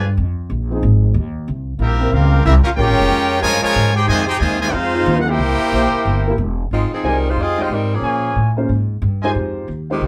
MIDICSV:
0, 0, Header, 1, 9, 480
1, 0, Start_track
1, 0, Key_signature, -4, "minor"
1, 0, Tempo, 328048
1, 253, Time_signature, 4, 2, 24, 8
1, 14740, End_track
2, 0, Start_track
2, 0, Title_t, "Trumpet section"
2, 0, Program_c, 0, 61
2, 10295, Note_on_c, 0, 80, 86
2, 10298, Note_on_c, 0, 72, 71
2, 10300, Note_on_c, 0, 65, 81
2, 10300, Note_on_c, 0, 75, 80
2, 10503, Note_off_c, 0, 80, 0
2, 10505, Note_off_c, 0, 72, 0
2, 10505, Note_off_c, 0, 75, 0
2, 10506, Note_off_c, 0, 65, 0
2, 11086, Note_on_c, 0, 65, 78
2, 11087, Note_on_c, 0, 79, 87
2, 11090, Note_on_c, 0, 75, 76
2, 11091, Note_on_c, 0, 72, 69
2, 11212, Note_off_c, 0, 65, 0
2, 11212, Note_off_c, 0, 79, 0
2, 11214, Note_off_c, 0, 75, 0
2, 11215, Note_off_c, 0, 72, 0
2, 11753, Note_on_c, 0, 70, 74
2, 11753, Note_on_c, 0, 80, 97
2, 11755, Note_on_c, 0, 73, 76
2, 11757, Note_on_c, 0, 65, 84
2, 12478, Note_off_c, 0, 70, 0
2, 12478, Note_off_c, 0, 80, 0
2, 12479, Note_off_c, 0, 65, 0
2, 12479, Note_off_c, 0, 73, 0
2, 13496, Note_on_c, 0, 65, 88
2, 13496, Note_on_c, 0, 72, 80
2, 13497, Note_on_c, 0, 80, 92
2, 13498, Note_on_c, 0, 75, 84
2, 13623, Note_off_c, 0, 65, 0
2, 13623, Note_off_c, 0, 72, 0
2, 13624, Note_off_c, 0, 80, 0
2, 13625, Note_off_c, 0, 75, 0
2, 14740, End_track
3, 0, Start_track
3, 0, Title_t, "Trumpet section"
3, 0, Program_c, 1, 61
3, 2644, Note_on_c, 1, 76, 83
3, 2646, Note_on_c, 1, 67, 77
3, 2653, Note_on_c, 1, 60, 74
3, 2653, Note_on_c, 1, 70, 77
3, 3083, Note_off_c, 1, 60, 0
3, 3084, Note_off_c, 1, 70, 0
3, 3085, Note_off_c, 1, 76, 0
3, 3087, Note_off_c, 1, 67, 0
3, 3101, Note_on_c, 1, 60, 84
3, 3102, Note_on_c, 1, 70, 88
3, 3110, Note_on_c, 1, 67, 86
3, 3113, Note_on_c, 1, 77, 93
3, 3557, Note_off_c, 1, 67, 0
3, 3568, Note_off_c, 1, 70, 0
3, 3573, Note_off_c, 1, 60, 0
3, 3575, Note_on_c, 1, 67, 72
3, 3586, Note_on_c, 1, 70, 85
3, 3589, Note_on_c, 1, 76, 90
3, 3591, Note_on_c, 1, 60, 77
3, 3593, Note_off_c, 1, 77, 0
3, 3712, Note_off_c, 1, 67, 0
3, 3721, Note_off_c, 1, 70, 0
3, 3723, Note_off_c, 1, 76, 0
3, 3725, Note_off_c, 1, 60, 0
3, 3848, Note_on_c, 1, 70, 79
3, 3853, Note_on_c, 1, 61, 84
3, 3856, Note_on_c, 1, 67, 73
3, 3860, Note_on_c, 1, 77, 85
3, 3939, Note_off_c, 1, 70, 0
3, 3944, Note_off_c, 1, 61, 0
3, 3946, Note_off_c, 1, 67, 0
3, 3949, Note_off_c, 1, 77, 0
3, 4036, Note_on_c, 1, 65, 91
3, 4040, Note_on_c, 1, 73, 96
3, 4044, Note_on_c, 1, 79, 112
3, 4052, Note_on_c, 1, 70, 102
3, 4952, Note_off_c, 1, 65, 0
3, 4954, Note_off_c, 1, 73, 0
3, 4956, Note_off_c, 1, 79, 0
3, 4961, Note_off_c, 1, 70, 0
3, 5003, Note_on_c, 1, 73, 104
3, 5006, Note_on_c, 1, 65, 105
3, 5007, Note_on_c, 1, 80, 119
3, 5011, Note_on_c, 1, 70, 103
3, 5279, Note_off_c, 1, 65, 0
3, 5280, Note_off_c, 1, 73, 0
3, 5293, Note_off_c, 1, 80, 0
3, 5295, Note_off_c, 1, 70, 0
3, 5296, Note_on_c, 1, 65, 95
3, 5297, Note_on_c, 1, 73, 104
3, 5311, Note_on_c, 1, 70, 101
3, 5317, Note_on_c, 1, 80, 113
3, 5755, Note_off_c, 1, 65, 0
3, 5756, Note_off_c, 1, 73, 0
3, 5763, Note_off_c, 1, 70, 0
3, 5766, Note_off_c, 1, 80, 0
3, 5789, Note_on_c, 1, 63, 87
3, 5791, Note_on_c, 1, 68, 90
3, 5795, Note_on_c, 1, 79, 105
3, 5796, Note_on_c, 1, 72, 85
3, 5955, Note_off_c, 1, 72, 0
3, 5965, Note_off_c, 1, 63, 0
3, 5966, Note_off_c, 1, 68, 0
3, 5969, Note_off_c, 1, 79, 0
3, 5970, Note_on_c, 1, 75, 97
3, 5973, Note_on_c, 1, 65, 92
3, 5973, Note_on_c, 1, 72, 99
3, 5974, Note_on_c, 1, 80, 103
3, 6224, Note_off_c, 1, 72, 0
3, 6242, Note_on_c, 1, 72, 92
3, 6251, Note_on_c, 1, 63, 100
3, 6254, Note_off_c, 1, 75, 0
3, 6254, Note_on_c, 1, 68, 88
3, 6255, Note_off_c, 1, 65, 0
3, 6256, Note_off_c, 1, 80, 0
3, 6264, Note_on_c, 1, 79, 104
3, 6417, Note_off_c, 1, 72, 0
3, 6430, Note_on_c, 1, 75, 89
3, 6432, Note_on_c, 1, 65, 93
3, 6432, Note_on_c, 1, 80, 100
3, 6435, Note_off_c, 1, 63, 0
3, 6435, Note_on_c, 1, 72, 93
3, 6437, Note_off_c, 1, 68, 0
3, 6442, Note_off_c, 1, 79, 0
3, 6717, Note_off_c, 1, 75, 0
3, 6724, Note_off_c, 1, 65, 0
3, 6724, Note_off_c, 1, 80, 0
3, 6725, Note_off_c, 1, 72, 0
3, 6735, Note_on_c, 1, 75, 96
3, 6739, Note_on_c, 1, 80, 110
3, 6742, Note_on_c, 1, 72, 82
3, 6743, Note_on_c, 1, 65, 90
3, 6898, Note_off_c, 1, 72, 0
3, 6915, Note_on_c, 1, 72, 88
3, 6916, Note_on_c, 1, 63, 90
3, 6917, Note_off_c, 1, 75, 0
3, 6918, Note_on_c, 1, 68, 85
3, 6918, Note_on_c, 1, 77, 112
3, 6920, Note_off_c, 1, 80, 0
3, 6922, Note_off_c, 1, 65, 0
3, 7580, Note_off_c, 1, 72, 0
3, 7581, Note_off_c, 1, 63, 0
3, 7581, Note_off_c, 1, 77, 0
3, 7582, Note_off_c, 1, 68, 0
3, 7615, Note_on_c, 1, 78, 71
3, 7732, Note_off_c, 1, 78, 0
3, 7747, Note_on_c, 1, 72, 95
3, 7748, Note_on_c, 1, 79, 97
3, 7754, Note_on_c, 1, 64, 95
3, 7754, Note_on_c, 1, 70, 86
3, 9359, Note_off_c, 1, 72, 0
3, 9360, Note_off_c, 1, 79, 0
3, 9363, Note_off_c, 1, 64, 0
3, 9363, Note_off_c, 1, 70, 0
3, 14740, End_track
4, 0, Start_track
4, 0, Title_t, "Grand piano"
4, 0, Program_c, 2, 0
4, 10308, Note_on_c, 2, 63, 49
4, 10308, Note_on_c, 2, 65, 50
4, 10309, Note_on_c, 2, 67, 55
4, 10311, Note_on_c, 2, 72, 55
4, 10314, Note_on_c, 2, 56, 54
4, 11030, Note_off_c, 2, 63, 0
4, 11031, Note_off_c, 2, 65, 0
4, 11031, Note_off_c, 2, 67, 0
4, 11032, Note_off_c, 2, 72, 0
4, 11034, Note_off_c, 2, 56, 0
4, 11086, Note_on_c, 2, 56, 52
4, 11086, Note_on_c, 2, 65, 53
4, 11088, Note_on_c, 2, 63, 52
4, 11097, Note_on_c, 2, 67, 52
4, 11102, Note_on_c, 2, 75, 69
4, 11254, Note_off_c, 2, 56, 0
4, 11254, Note_off_c, 2, 65, 0
4, 11255, Note_off_c, 2, 63, 0
4, 11259, Note_off_c, 2, 67, 0
4, 11262, Note_off_c, 2, 75, 0
4, 12534, Note_on_c, 2, 58, 55
4, 12540, Note_on_c, 2, 65, 50
4, 12541, Note_on_c, 2, 61, 52
4, 12549, Note_on_c, 2, 68, 49
4, 12554, Note_on_c, 2, 72, 55
4, 12702, Note_off_c, 2, 58, 0
4, 12705, Note_off_c, 2, 61, 0
4, 12705, Note_off_c, 2, 65, 0
4, 12710, Note_off_c, 2, 68, 0
4, 12712, Note_off_c, 2, 72, 0
4, 13517, Note_on_c, 2, 56, 60
4, 13520, Note_on_c, 2, 63, 57
4, 13520, Note_on_c, 2, 67, 63
4, 13526, Note_on_c, 2, 65, 57
4, 13531, Note_on_c, 2, 72, 69
4, 14141, Note_off_c, 2, 56, 0
4, 14143, Note_off_c, 2, 63, 0
4, 14143, Note_off_c, 2, 67, 0
4, 14146, Note_off_c, 2, 65, 0
4, 14148, Note_off_c, 2, 72, 0
4, 14485, Note_on_c, 2, 65, 52
4, 14493, Note_on_c, 2, 67, 51
4, 14495, Note_on_c, 2, 56, 58
4, 14495, Note_on_c, 2, 63, 51
4, 14500, Note_on_c, 2, 72, 61
4, 14644, Note_off_c, 2, 65, 0
4, 14648, Note_off_c, 2, 56, 0
4, 14648, Note_off_c, 2, 63, 0
4, 14648, Note_off_c, 2, 67, 0
4, 14651, Note_off_c, 2, 72, 0
4, 14740, End_track
5, 0, Start_track
5, 0, Title_t, "Trombone section"
5, 0, Program_c, 3, 61
5, 1014, Note_on_c, 3, 53, 94
5, 1016, Note_on_c, 3, 63, 91
5, 1027, Note_on_c, 3, 60, 93
5, 1027, Note_on_c, 3, 68, 98
5, 1642, Note_off_c, 3, 53, 0
5, 1643, Note_off_c, 3, 63, 0
5, 1648, Note_off_c, 3, 60, 0
5, 1649, Note_off_c, 3, 68, 0
5, 2924, Note_on_c, 3, 55, 87
5, 2933, Note_on_c, 3, 64, 81
5, 2934, Note_on_c, 3, 60, 92
5, 2934, Note_on_c, 3, 70, 97
5, 3553, Note_off_c, 3, 55, 0
5, 3557, Note_off_c, 3, 60, 0
5, 3557, Note_off_c, 3, 64, 0
5, 3557, Note_off_c, 3, 70, 0
5, 4031, Note_on_c, 3, 70, 97
5, 4035, Note_on_c, 3, 56, 97
5, 4043, Note_on_c, 3, 61, 88
5, 4044, Note_on_c, 3, 65, 85
5, 4767, Note_off_c, 3, 70, 0
5, 4769, Note_off_c, 3, 56, 0
5, 4773, Note_off_c, 3, 61, 0
5, 4773, Note_off_c, 3, 65, 0
5, 7237, Note_on_c, 3, 72, 117
5, 7241, Note_on_c, 3, 63, 93
5, 7244, Note_on_c, 3, 65, 106
5, 7248, Note_on_c, 3, 56, 102
5, 7866, Note_off_c, 3, 72, 0
5, 7867, Note_off_c, 3, 63, 0
5, 7869, Note_off_c, 3, 65, 0
5, 7871, Note_off_c, 3, 56, 0
5, 8358, Note_on_c, 3, 67, 90
5, 8362, Note_on_c, 3, 58, 101
5, 8367, Note_on_c, 3, 64, 101
5, 8380, Note_on_c, 3, 72, 115
5, 8569, Note_off_c, 3, 67, 0
5, 8572, Note_off_c, 3, 58, 0
5, 8575, Note_off_c, 3, 64, 0
5, 8583, Note_off_c, 3, 72, 0
5, 9163, Note_on_c, 3, 64, 91
5, 9168, Note_on_c, 3, 58, 97
5, 9174, Note_on_c, 3, 70, 104
5, 9182, Note_on_c, 3, 67, 87
5, 9287, Note_off_c, 3, 64, 0
5, 9290, Note_off_c, 3, 58, 0
5, 9294, Note_off_c, 3, 70, 0
5, 9299, Note_off_c, 3, 67, 0
5, 14740, End_track
6, 0, Start_track
6, 0, Title_t, "Saxophone section"
6, 0, Program_c, 4, 65
6, 9845, Note_on_c, 4, 63, 73
6, 9849, Note_on_c, 4, 60, 70
6, 9851, Note_on_c, 4, 56, 74
6, 9853, Note_on_c, 4, 65, 83
6, 10115, Note_off_c, 4, 63, 0
6, 10117, Note_off_c, 4, 60, 0
6, 10118, Note_off_c, 4, 56, 0
6, 10119, Note_off_c, 4, 65, 0
6, 10150, Note_on_c, 4, 53, 75
6, 10150, Note_on_c, 4, 63, 75
6, 10152, Note_on_c, 4, 60, 68
6, 10158, Note_on_c, 4, 68, 81
6, 10310, Note_off_c, 4, 53, 0
6, 10310, Note_off_c, 4, 63, 0
6, 10311, Note_off_c, 4, 60, 0
6, 10314, Note_off_c, 4, 68, 0
6, 10356, Note_on_c, 4, 60, 82
6, 10359, Note_on_c, 4, 63, 77
6, 10360, Note_on_c, 4, 70, 101
6, 10363, Note_on_c, 4, 55, 75
6, 10632, Note_off_c, 4, 60, 0
6, 10633, Note_off_c, 4, 63, 0
6, 10634, Note_off_c, 4, 70, 0
6, 10636, Note_off_c, 4, 55, 0
6, 10673, Note_on_c, 4, 72, 92
6, 10680, Note_on_c, 4, 56, 75
6, 10687, Note_on_c, 4, 63, 81
6, 10687, Note_on_c, 4, 65, 81
6, 10825, Note_off_c, 4, 72, 0
6, 10828, Note_off_c, 4, 56, 0
6, 10831, Note_off_c, 4, 63, 0
6, 10831, Note_off_c, 4, 65, 0
6, 10848, Note_on_c, 4, 68, 99
6, 10849, Note_on_c, 4, 60, 89
6, 10851, Note_on_c, 4, 75, 100
6, 10852, Note_on_c, 4, 65, 93
6, 11119, Note_off_c, 4, 68, 0
6, 11120, Note_off_c, 4, 60, 0
6, 11121, Note_off_c, 4, 65, 0
6, 11121, Note_off_c, 4, 75, 0
6, 11152, Note_on_c, 4, 72, 89
6, 11153, Note_on_c, 4, 56, 80
6, 11156, Note_on_c, 4, 65, 77
6, 11168, Note_on_c, 4, 63, 78
6, 11296, Note_off_c, 4, 63, 0
6, 11305, Note_off_c, 4, 72, 0
6, 11306, Note_off_c, 4, 56, 0
6, 11307, Note_off_c, 4, 65, 0
6, 11313, Note_on_c, 4, 63, 69
6, 11319, Note_on_c, 4, 60, 75
6, 11325, Note_on_c, 4, 55, 71
6, 11327, Note_on_c, 4, 70, 84
6, 11593, Note_off_c, 4, 63, 0
6, 11596, Note_off_c, 4, 60, 0
6, 11599, Note_off_c, 4, 55, 0
6, 11600, Note_off_c, 4, 70, 0
6, 11628, Note_on_c, 4, 53, 79
6, 11630, Note_on_c, 4, 68, 85
6, 11632, Note_on_c, 4, 61, 79
6, 11641, Note_on_c, 4, 58, 78
6, 12267, Note_off_c, 4, 53, 0
6, 12268, Note_off_c, 4, 68, 0
6, 12270, Note_off_c, 4, 61, 0
6, 12274, Note_off_c, 4, 58, 0
6, 14508, Note_on_c, 4, 56, 74
6, 14510, Note_on_c, 4, 60, 68
6, 14511, Note_on_c, 4, 51, 65
6, 14525, Note_on_c, 4, 67, 75
6, 14662, Note_off_c, 4, 56, 0
6, 14663, Note_off_c, 4, 51, 0
6, 14663, Note_off_c, 4, 60, 0
6, 14671, Note_off_c, 4, 67, 0
6, 14740, End_track
7, 0, Start_track
7, 0, Title_t, "Trombone section"
7, 0, Program_c, 5, 61
7, 2614, Note_on_c, 5, 64, 76
7, 2624, Note_on_c, 5, 58, 77
7, 2626, Note_on_c, 5, 55, 77
7, 3070, Note_off_c, 5, 55, 0
7, 3070, Note_off_c, 5, 64, 0
7, 3075, Note_off_c, 5, 58, 0
7, 3088, Note_on_c, 5, 55, 89
7, 3093, Note_on_c, 5, 65, 91
7, 3094, Note_on_c, 5, 58, 91
7, 3550, Note_off_c, 5, 58, 0
7, 3552, Note_off_c, 5, 55, 0
7, 3567, Note_on_c, 5, 58, 82
7, 3569, Note_on_c, 5, 55, 85
7, 3573, Note_on_c, 5, 64, 82
7, 3583, Note_off_c, 5, 65, 0
7, 3706, Note_off_c, 5, 58, 0
7, 3708, Note_off_c, 5, 55, 0
7, 3711, Note_off_c, 5, 64, 0
7, 3864, Note_on_c, 5, 65, 83
7, 3952, Note_off_c, 5, 65, 0
7, 4044, Note_on_c, 5, 61, 106
7, 4052, Note_on_c, 5, 67, 105
7, 4057, Note_on_c, 5, 56, 97
7, 4956, Note_off_c, 5, 61, 0
7, 4960, Note_off_c, 5, 67, 0
7, 4963, Note_off_c, 5, 56, 0
7, 4988, Note_on_c, 5, 53, 106
7, 4989, Note_on_c, 5, 49, 103
7, 4993, Note_on_c, 5, 56, 110
7, 5249, Note_off_c, 5, 49, 0
7, 5254, Note_off_c, 5, 56, 0
7, 5257, Note_off_c, 5, 53, 0
7, 5266, Note_on_c, 5, 49, 94
7, 5272, Note_on_c, 5, 56, 102
7, 5274, Note_on_c, 5, 53, 103
7, 5739, Note_off_c, 5, 49, 0
7, 5742, Note_off_c, 5, 56, 0
7, 5744, Note_off_c, 5, 53, 0
7, 5758, Note_on_c, 5, 67, 84
7, 5943, Note_on_c, 5, 51, 105
7, 5949, Note_off_c, 5, 67, 0
7, 5950, Note_on_c, 5, 56, 98
7, 5953, Note_on_c, 5, 48, 107
7, 6239, Note_off_c, 5, 51, 0
7, 6243, Note_off_c, 5, 56, 0
7, 6244, Note_on_c, 5, 67, 85
7, 6245, Note_off_c, 5, 48, 0
7, 6432, Note_off_c, 5, 67, 0
7, 6444, Note_on_c, 5, 48, 86
7, 6445, Note_on_c, 5, 56, 92
7, 6448, Note_on_c, 5, 51, 93
7, 6720, Note_off_c, 5, 56, 0
7, 6721, Note_off_c, 5, 51, 0
7, 6731, Note_off_c, 5, 48, 0
7, 6738, Note_on_c, 5, 51, 96
7, 6738, Note_on_c, 5, 56, 98
7, 6746, Note_on_c, 5, 48, 102
7, 6919, Note_off_c, 5, 51, 0
7, 6919, Note_off_c, 5, 56, 0
7, 6923, Note_off_c, 5, 48, 0
7, 6927, Note_on_c, 5, 65, 92
7, 6929, Note_on_c, 5, 60, 86
7, 6936, Note_on_c, 5, 56, 85
7, 7586, Note_off_c, 5, 65, 0
7, 7587, Note_off_c, 5, 60, 0
7, 7591, Note_off_c, 5, 56, 0
7, 7716, Note_on_c, 5, 64, 90
7, 7716, Note_on_c, 5, 67, 91
7, 7723, Note_on_c, 5, 58, 96
7, 9343, Note_off_c, 5, 64, 0
7, 9344, Note_off_c, 5, 67, 0
7, 9347, Note_off_c, 5, 58, 0
7, 14740, End_track
8, 0, Start_track
8, 0, Title_t, "Upright bass"
8, 0, Program_c, 6, 32
8, 0, Note_on_c, 6, 43, 117
8, 235, Note_off_c, 6, 43, 0
8, 255, Note_on_c, 6, 41, 97
8, 717, Note_off_c, 6, 41, 0
8, 726, Note_on_c, 6, 34, 93
8, 1191, Note_off_c, 6, 34, 0
8, 1209, Note_on_c, 6, 32, 107
8, 1663, Note_off_c, 6, 32, 0
8, 1672, Note_on_c, 6, 39, 104
8, 2141, Note_off_c, 6, 39, 0
8, 2160, Note_on_c, 6, 36, 93
8, 2609, Note_off_c, 6, 36, 0
8, 2618, Note_on_c, 6, 34, 89
8, 3091, Note_off_c, 6, 34, 0
8, 3102, Note_on_c, 6, 37, 92
8, 3572, Note_off_c, 6, 37, 0
8, 3592, Note_on_c, 6, 36, 117
8, 3868, Note_off_c, 6, 36, 0
8, 4054, Note_on_c, 6, 34, 94
8, 4224, Note_off_c, 6, 34, 0
8, 4224, Note_on_c, 6, 32, 67
8, 4367, Note_off_c, 6, 32, 0
8, 4376, Note_on_c, 6, 29, 70
8, 4520, Note_off_c, 6, 29, 0
8, 4528, Note_on_c, 6, 41, 94
8, 5003, Note_off_c, 6, 41, 0
8, 5010, Note_on_c, 6, 43, 98
8, 5295, Note_off_c, 6, 43, 0
8, 5491, Note_on_c, 6, 44, 110
8, 5964, Note_off_c, 6, 44, 0
8, 5973, Note_on_c, 6, 41, 97
8, 6435, Note_off_c, 6, 41, 0
8, 6443, Note_on_c, 6, 39, 91
8, 6913, Note_off_c, 6, 39, 0
8, 6921, Note_on_c, 6, 41, 99
8, 7398, Note_off_c, 6, 41, 0
8, 7404, Note_on_c, 6, 39, 122
8, 7868, Note_off_c, 6, 39, 0
8, 7877, Note_on_c, 6, 36, 96
8, 8167, Note_off_c, 6, 36, 0
8, 8367, Note_on_c, 6, 34, 84
8, 8652, Note_off_c, 6, 34, 0
8, 8857, Note_on_c, 6, 31, 98
8, 9328, Note_off_c, 6, 31, 0
8, 9336, Note_on_c, 6, 28, 97
8, 9808, Note_off_c, 6, 28, 0
8, 9817, Note_on_c, 6, 32, 79
8, 10100, Note_off_c, 6, 32, 0
8, 10298, Note_on_c, 6, 36, 83
8, 10760, Note_off_c, 6, 36, 0
8, 10769, Note_on_c, 6, 41, 82
8, 11236, Note_off_c, 6, 41, 0
8, 11245, Note_on_c, 6, 44, 90
8, 11718, Note_off_c, 6, 44, 0
8, 11727, Note_on_c, 6, 46, 85
8, 12210, Note_off_c, 6, 46, 0
8, 12229, Note_on_c, 6, 45, 82
8, 12703, Note_off_c, 6, 45, 0
8, 12715, Note_on_c, 6, 44, 87
8, 13188, Note_off_c, 6, 44, 0
8, 13194, Note_on_c, 6, 43, 107
8, 13669, Note_off_c, 6, 43, 0
8, 13678, Note_on_c, 6, 41, 91
8, 14152, Note_off_c, 6, 41, 0
8, 14163, Note_on_c, 6, 39, 91
8, 14636, Note_off_c, 6, 39, 0
8, 14642, Note_on_c, 6, 36, 95
8, 14740, Note_off_c, 6, 36, 0
8, 14740, End_track
9, 0, Start_track
9, 0, Title_t, "Muted upright bass strokes"
9, 3890, Note_on_c, 9, 29, 44
9, 4036, Note_off_c, 9, 29, 0
9, 5315, Note_on_c, 9, 29, 44
9, 5461, Note_off_c, 9, 29, 0
9, 8194, Note_on_c, 9, 29, 43
9, 8340, Note_off_c, 9, 29, 0
9, 8672, Note_on_c, 9, 29, 47
9, 8819, Note_off_c, 9, 29, 0
9, 14740, End_track
0, 0, End_of_file